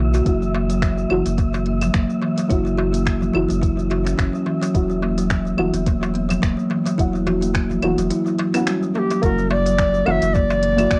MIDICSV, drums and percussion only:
0, 0, Header, 1, 3, 480
1, 0, Start_track
1, 0, Tempo, 560748
1, 220, Time_signature, 4, 2, 24, 8
1, 9413, End_track
2, 0, Start_track
2, 0, Title_t, "Darbuka"
2, 125, Note_on_c, 9, 63, 53
2, 211, Note_off_c, 9, 63, 0
2, 467, Note_on_c, 9, 63, 74
2, 476, Note_on_c, 9, 62, 64
2, 552, Note_off_c, 9, 63, 0
2, 561, Note_off_c, 9, 62, 0
2, 1083, Note_on_c, 9, 63, 30
2, 1169, Note_off_c, 9, 63, 0
2, 1190, Note_on_c, 9, 62, 60
2, 1275, Note_off_c, 9, 62, 0
2, 1321, Note_on_c, 9, 63, 70
2, 1406, Note_off_c, 9, 63, 0
2, 1560, Note_on_c, 9, 63, 30
2, 1561, Note_on_c, 9, 64, 89
2, 1646, Note_off_c, 9, 63, 0
2, 1647, Note_off_c, 9, 64, 0
2, 1903, Note_on_c, 9, 63, 58
2, 1988, Note_off_c, 9, 63, 0
2, 2046, Note_on_c, 9, 62, 56
2, 2132, Note_off_c, 9, 62, 0
2, 2279, Note_on_c, 9, 62, 38
2, 2365, Note_off_c, 9, 62, 0
2, 2383, Note_on_c, 9, 62, 56
2, 2383, Note_on_c, 9, 63, 72
2, 2469, Note_off_c, 9, 62, 0
2, 2469, Note_off_c, 9, 63, 0
2, 2757, Note_on_c, 9, 64, 76
2, 2843, Note_off_c, 9, 64, 0
2, 3350, Note_on_c, 9, 63, 64
2, 3435, Note_off_c, 9, 63, 0
2, 3822, Note_on_c, 9, 62, 66
2, 3908, Note_off_c, 9, 62, 0
2, 3961, Note_on_c, 9, 63, 59
2, 4046, Note_off_c, 9, 63, 0
2, 4301, Note_on_c, 9, 62, 68
2, 4306, Note_on_c, 9, 63, 71
2, 4387, Note_off_c, 9, 62, 0
2, 4392, Note_off_c, 9, 63, 0
2, 4916, Note_on_c, 9, 63, 32
2, 5001, Note_off_c, 9, 63, 0
2, 5031, Note_on_c, 9, 62, 67
2, 5117, Note_off_c, 9, 62, 0
2, 5161, Note_on_c, 9, 63, 78
2, 5247, Note_off_c, 9, 63, 0
2, 5401, Note_on_c, 9, 63, 33
2, 5401, Note_on_c, 9, 64, 85
2, 5486, Note_off_c, 9, 63, 0
2, 5487, Note_off_c, 9, 64, 0
2, 5741, Note_on_c, 9, 63, 63
2, 5827, Note_off_c, 9, 63, 0
2, 5879, Note_on_c, 9, 62, 61
2, 5965, Note_off_c, 9, 62, 0
2, 6122, Note_on_c, 9, 62, 38
2, 6208, Note_off_c, 9, 62, 0
2, 6221, Note_on_c, 9, 63, 72
2, 6226, Note_on_c, 9, 62, 67
2, 6226, Note_on_c, 9, 64, 86
2, 6307, Note_off_c, 9, 63, 0
2, 6311, Note_off_c, 9, 62, 0
2, 6312, Note_off_c, 9, 64, 0
2, 6599, Note_on_c, 9, 64, 77
2, 6684, Note_off_c, 9, 64, 0
2, 6840, Note_on_c, 9, 63, 38
2, 6926, Note_off_c, 9, 63, 0
2, 7087, Note_on_c, 9, 62, 39
2, 7173, Note_off_c, 9, 62, 0
2, 7184, Note_on_c, 9, 63, 73
2, 7270, Note_off_c, 9, 63, 0
2, 7666, Note_on_c, 9, 62, 70
2, 7751, Note_off_c, 9, 62, 0
2, 7800, Note_on_c, 9, 63, 57
2, 7886, Note_off_c, 9, 63, 0
2, 8138, Note_on_c, 9, 63, 84
2, 8142, Note_on_c, 9, 62, 66
2, 8224, Note_off_c, 9, 63, 0
2, 8228, Note_off_c, 9, 62, 0
2, 8757, Note_on_c, 9, 63, 39
2, 8842, Note_off_c, 9, 63, 0
2, 8863, Note_on_c, 9, 62, 69
2, 8949, Note_off_c, 9, 62, 0
2, 8991, Note_on_c, 9, 63, 85
2, 9077, Note_off_c, 9, 63, 0
2, 9097, Note_on_c, 9, 62, 37
2, 9182, Note_off_c, 9, 62, 0
2, 9226, Note_on_c, 9, 63, 38
2, 9237, Note_on_c, 9, 64, 81
2, 9312, Note_off_c, 9, 63, 0
2, 9322, Note_off_c, 9, 64, 0
2, 9413, End_track
3, 0, Start_track
3, 0, Title_t, "Drums"
3, 117, Note_on_c, 9, 82, 66
3, 203, Note_off_c, 9, 82, 0
3, 223, Note_on_c, 9, 36, 96
3, 223, Note_on_c, 9, 42, 51
3, 226, Note_on_c, 9, 82, 49
3, 308, Note_off_c, 9, 36, 0
3, 308, Note_off_c, 9, 42, 0
3, 311, Note_off_c, 9, 82, 0
3, 360, Note_on_c, 9, 82, 31
3, 446, Note_off_c, 9, 82, 0
3, 597, Note_on_c, 9, 42, 40
3, 600, Note_on_c, 9, 82, 64
3, 682, Note_off_c, 9, 42, 0
3, 686, Note_off_c, 9, 82, 0
3, 703, Note_on_c, 9, 36, 100
3, 704, Note_on_c, 9, 26, 91
3, 704, Note_on_c, 9, 42, 52
3, 707, Note_on_c, 9, 82, 51
3, 788, Note_off_c, 9, 36, 0
3, 789, Note_off_c, 9, 26, 0
3, 789, Note_off_c, 9, 42, 0
3, 792, Note_off_c, 9, 82, 0
3, 839, Note_on_c, 9, 82, 30
3, 925, Note_off_c, 9, 82, 0
3, 943, Note_on_c, 9, 75, 74
3, 1029, Note_off_c, 9, 75, 0
3, 1077, Note_on_c, 9, 42, 41
3, 1080, Note_on_c, 9, 82, 60
3, 1162, Note_off_c, 9, 42, 0
3, 1165, Note_off_c, 9, 82, 0
3, 1182, Note_on_c, 9, 42, 53
3, 1183, Note_on_c, 9, 36, 100
3, 1186, Note_on_c, 9, 82, 51
3, 1268, Note_off_c, 9, 36, 0
3, 1268, Note_off_c, 9, 42, 0
3, 1271, Note_off_c, 9, 82, 0
3, 1317, Note_on_c, 9, 82, 34
3, 1403, Note_off_c, 9, 82, 0
3, 1419, Note_on_c, 9, 42, 29
3, 1505, Note_off_c, 9, 42, 0
3, 1553, Note_on_c, 9, 42, 43
3, 1553, Note_on_c, 9, 75, 62
3, 1556, Note_on_c, 9, 82, 63
3, 1638, Note_off_c, 9, 42, 0
3, 1638, Note_off_c, 9, 75, 0
3, 1641, Note_off_c, 9, 82, 0
3, 1659, Note_on_c, 9, 26, 94
3, 1659, Note_on_c, 9, 42, 53
3, 1663, Note_on_c, 9, 36, 102
3, 1663, Note_on_c, 9, 82, 56
3, 1745, Note_off_c, 9, 26, 0
3, 1745, Note_off_c, 9, 42, 0
3, 1748, Note_off_c, 9, 82, 0
3, 1749, Note_off_c, 9, 36, 0
3, 1796, Note_on_c, 9, 82, 32
3, 1882, Note_off_c, 9, 82, 0
3, 2033, Note_on_c, 9, 42, 41
3, 2036, Note_on_c, 9, 82, 63
3, 2119, Note_off_c, 9, 42, 0
3, 2122, Note_off_c, 9, 82, 0
3, 2142, Note_on_c, 9, 36, 94
3, 2143, Note_on_c, 9, 42, 54
3, 2146, Note_on_c, 9, 82, 51
3, 2228, Note_off_c, 9, 36, 0
3, 2229, Note_off_c, 9, 42, 0
3, 2232, Note_off_c, 9, 82, 0
3, 2279, Note_on_c, 9, 82, 30
3, 2365, Note_off_c, 9, 82, 0
3, 2516, Note_on_c, 9, 42, 43
3, 2519, Note_on_c, 9, 82, 59
3, 2601, Note_off_c, 9, 42, 0
3, 2605, Note_off_c, 9, 82, 0
3, 2623, Note_on_c, 9, 36, 89
3, 2625, Note_on_c, 9, 26, 93
3, 2625, Note_on_c, 9, 42, 50
3, 2628, Note_on_c, 9, 82, 53
3, 2708, Note_off_c, 9, 36, 0
3, 2710, Note_off_c, 9, 26, 0
3, 2710, Note_off_c, 9, 42, 0
3, 2714, Note_off_c, 9, 82, 0
3, 2759, Note_on_c, 9, 82, 31
3, 2845, Note_off_c, 9, 82, 0
3, 2865, Note_on_c, 9, 75, 75
3, 2951, Note_off_c, 9, 75, 0
3, 2997, Note_on_c, 9, 42, 40
3, 3000, Note_on_c, 9, 82, 62
3, 3082, Note_off_c, 9, 42, 0
3, 3086, Note_off_c, 9, 82, 0
3, 3103, Note_on_c, 9, 36, 96
3, 3107, Note_on_c, 9, 42, 55
3, 3110, Note_on_c, 9, 82, 55
3, 3189, Note_off_c, 9, 36, 0
3, 3192, Note_off_c, 9, 42, 0
3, 3196, Note_off_c, 9, 82, 0
3, 3242, Note_on_c, 9, 82, 35
3, 3328, Note_off_c, 9, 82, 0
3, 3345, Note_on_c, 9, 42, 28
3, 3431, Note_off_c, 9, 42, 0
3, 3480, Note_on_c, 9, 26, 30
3, 3480, Note_on_c, 9, 42, 45
3, 3483, Note_on_c, 9, 82, 64
3, 3565, Note_off_c, 9, 26, 0
3, 3565, Note_off_c, 9, 42, 0
3, 3568, Note_off_c, 9, 82, 0
3, 3582, Note_on_c, 9, 36, 93
3, 3584, Note_on_c, 9, 26, 93
3, 3584, Note_on_c, 9, 42, 53
3, 3587, Note_on_c, 9, 82, 51
3, 3668, Note_off_c, 9, 36, 0
3, 3670, Note_off_c, 9, 26, 0
3, 3670, Note_off_c, 9, 42, 0
3, 3673, Note_off_c, 9, 82, 0
3, 3721, Note_on_c, 9, 82, 31
3, 3806, Note_off_c, 9, 82, 0
3, 3959, Note_on_c, 9, 42, 46
3, 3963, Note_on_c, 9, 82, 70
3, 4045, Note_off_c, 9, 42, 0
3, 4048, Note_off_c, 9, 82, 0
3, 4062, Note_on_c, 9, 36, 97
3, 4064, Note_on_c, 9, 42, 53
3, 4067, Note_on_c, 9, 82, 50
3, 4147, Note_off_c, 9, 36, 0
3, 4150, Note_off_c, 9, 42, 0
3, 4153, Note_off_c, 9, 82, 0
3, 4199, Note_on_c, 9, 82, 30
3, 4285, Note_off_c, 9, 82, 0
3, 4433, Note_on_c, 9, 42, 44
3, 4437, Note_on_c, 9, 82, 62
3, 4519, Note_off_c, 9, 42, 0
3, 4522, Note_off_c, 9, 82, 0
3, 4539, Note_on_c, 9, 26, 95
3, 4539, Note_on_c, 9, 42, 53
3, 4542, Note_on_c, 9, 36, 88
3, 4542, Note_on_c, 9, 82, 49
3, 4625, Note_off_c, 9, 26, 0
3, 4625, Note_off_c, 9, 42, 0
3, 4627, Note_off_c, 9, 36, 0
3, 4628, Note_off_c, 9, 82, 0
3, 4678, Note_on_c, 9, 82, 31
3, 4764, Note_off_c, 9, 82, 0
3, 4777, Note_on_c, 9, 75, 75
3, 4863, Note_off_c, 9, 75, 0
3, 4911, Note_on_c, 9, 42, 44
3, 4914, Note_on_c, 9, 82, 63
3, 4996, Note_off_c, 9, 42, 0
3, 5000, Note_off_c, 9, 82, 0
3, 5020, Note_on_c, 9, 42, 59
3, 5021, Note_on_c, 9, 36, 97
3, 5023, Note_on_c, 9, 82, 51
3, 5106, Note_off_c, 9, 42, 0
3, 5107, Note_off_c, 9, 36, 0
3, 5109, Note_off_c, 9, 82, 0
3, 5158, Note_on_c, 9, 82, 33
3, 5244, Note_off_c, 9, 82, 0
3, 5265, Note_on_c, 9, 42, 30
3, 5350, Note_off_c, 9, 42, 0
3, 5395, Note_on_c, 9, 42, 46
3, 5395, Note_on_c, 9, 75, 61
3, 5398, Note_on_c, 9, 82, 63
3, 5481, Note_off_c, 9, 42, 0
3, 5481, Note_off_c, 9, 75, 0
3, 5484, Note_off_c, 9, 82, 0
3, 5502, Note_on_c, 9, 36, 100
3, 5503, Note_on_c, 9, 26, 95
3, 5503, Note_on_c, 9, 42, 57
3, 5506, Note_on_c, 9, 82, 51
3, 5587, Note_off_c, 9, 36, 0
3, 5589, Note_off_c, 9, 26, 0
3, 5589, Note_off_c, 9, 42, 0
3, 5592, Note_off_c, 9, 82, 0
3, 5641, Note_on_c, 9, 82, 30
3, 5726, Note_off_c, 9, 82, 0
3, 5875, Note_on_c, 9, 42, 45
3, 5878, Note_on_c, 9, 82, 66
3, 5960, Note_off_c, 9, 42, 0
3, 5964, Note_off_c, 9, 82, 0
3, 5981, Note_on_c, 9, 36, 101
3, 5986, Note_on_c, 9, 42, 55
3, 5989, Note_on_c, 9, 82, 50
3, 6067, Note_off_c, 9, 36, 0
3, 6071, Note_off_c, 9, 42, 0
3, 6075, Note_off_c, 9, 82, 0
3, 6121, Note_on_c, 9, 82, 30
3, 6206, Note_off_c, 9, 82, 0
3, 6223, Note_on_c, 9, 42, 31
3, 6308, Note_off_c, 9, 42, 0
3, 6354, Note_on_c, 9, 42, 44
3, 6358, Note_on_c, 9, 82, 65
3, 6440, Note_off_c, 9, 42, 0
3, 6443, Note_off_c, 9, 82, 0
3, 6460, Note_on_c, 9, 26, 102
3, 6460, Note_on_c, 9, 36, 89
3, 6460, Note_on_c, 9, 42, 56
3, 6463, Note_on_c, 9, 82, 51
3, 6546, Note_off_c, 9, 26, 0
3, 6546, Note_off_c, 9, 36, 0
3, 6546, Note_off_c, 9, 42, 0
3, 6549, Note_off_c, 9, 82, 0
3, 6595, Note_on_c, 9, 82, 30
3, 6681, Note_off_c, 9, 82, 0
3, 6698, Note_on_c, 9, 42, 33
3, 6698, Note_on_c, 9, 75, 76
3, 6783, Note_off_c, 9, 42, 0
3, 6783, Note_off_c, 9, 75, 0
3, 6832, Note_on_c, 9, 42, 46
3, 6836, Note_on_c, 9, 82, 60
3, 6918, Note_off_c, 9, 42, 0
3, 6921, Note_off_c, 9, 82, 0
3, 6938, Note_on_c, 9, 42, 60
3, 6941, Note_on_c, 9, 82, 52
3, 7023, Note_off_c, 9, 42, 0
3, 7027, Note_off_c, 9, 82, 0
3, 7073, Note_on_c, 9, 82, 34
3, 7158, Note_off_c, 9, 82, 0
3, 7178, Note_on_c, 9, 42, 30
3, 7263, Note_off_c, 9, 42, 0
3, 7311, Note_on_c, 9, 26, 33
3, 7311, Note_on_c, 9, 42, 46
3, 7311, Note_on_c, 9, 75, 60
3, 7314, Note_on_c, 9, 82, 66
3, 7396, Note_off_c, 9, 26, 0
3, 7396, Note_off_c, 9, 42, 0
3, 7396, Note_off_c, 9, 75, 0
3, 7399, Note_off_c, 9, 82, 0
3, 7420, Note_on_c, 9, 26, 101
3, 7420, Note_on_c, 9, 42, 60
3, 7423, Note_on_c, 9, 82, 49
3, 7505, Note_off_c, 9, 26, 0
3, 7505, Note_off_c, 9, 42, 0
3, 7509, Note_off_c, 9, 82, 0
3, 7557, Note_on_c, 9, 82, 31
3, 7642, Note_off_c, 9, 82, 0
3, 7794, Note_on_c, 9, 42, 51
3, 7798, Note_on_c, 9, 82, 62
3, 7880, Note_off_c, 9, 42, 0
3, 7883, Note_off_c, 9, 82, 0
3, 7900, Note_on_c, 9, 36, 106
3, 7900, Note_on_c, 9, 42, 58
3, 7903, Note_on_c, 9, 82, 55
3, 7986, Note_off_c, 9, 36, 0
3, 7986, Note_off_c, 9, 42, 0
3, 7989, Note_off_c, 9, 82, 0
3, 8034, Note_on_c, 9, 82, 32
3, 8119, Note_off_c, 9, 82, 0
3, 8272, Note_on_c, 9, 42, 47
3, 8275, Note_on_c, 9, 82, 68
3, 8358, Note_off_c, 9, 42, 0
3, 8361, Note_off_c, 9, 82, 0
3, 8376, Note_on_c, 9, 26, 102
3, 8376, Note_on_c, 9, 42, 58
3, 8379, Note_on_c, 9, 82, 52
3, 8380, Note_on_c, 9, 36, 96
3, 8461, Note_off_c, 9, 26, 0
3, 8461, Note_off_c, 9, 42, 0
3, 8464, Note_off_c, 9, 82, 0
3, 8465, Note_off_c, 9, 36, 0
3, 8512, Note_on_c, 9, 82, 34
3, 8597, Note_off_c, 9, 82, 0
3, 8613, Note_on_c, 9, 75, 72
3, 8699, Note_off_c, 9, 75, 0
3, 8748, Note_on_c, 9, 42, 47
3, 8751, Note_on_c, 9, 82, 69
3, 8833, Note_off_c, 9, 42, 0
3, 8836, Note_off_c, 9, 82, 0
3, 8858, Note_on_c, 9, 82, 57
3, 8860, Note_on_c, 9, 36, 98
3, 8943, Note_off_c, 9, 82, 0
3, 8945, Note_off_c, 9, 36, 0
3, 8991, Note_on_c, 9, 82, 34
3, 9077, Note_off_c, 9, 82, 0
3, 9097, Note_on_c, 9, 42, 59
3, 9182, Note_off_c, 9, 42, 0
3, 9231, Note_on_c, 9, 42, 49
3, 9231, Note_on_c, 9, 75, 61
3, 9234, Note_on_c, 9, 82, 67
3, 9317, Note_off_c, 9, 42, 0
3, 9317, Note_off_c, 9, 75, 0
3, 9320, Note_off_c, 9, 82, 0
3, 9336, Note_on_c, 9, 26, 107
3, 9336, Note_on_c, 9, 42, 58
3, 9338, Note_on_c, 9, 36, 105
3, 9339, Note_on_c, 9, 82, 55
3, 9413, Note_off_c, 9, 26, 0
3, 9413, Note_off_c, 9, 36, 0
3, 9413, Note_off_c, 9, 42, 0
3, 9413, Note_off_c, 9, 82, 0
3, 9413, End_track
0, 0, End_of_file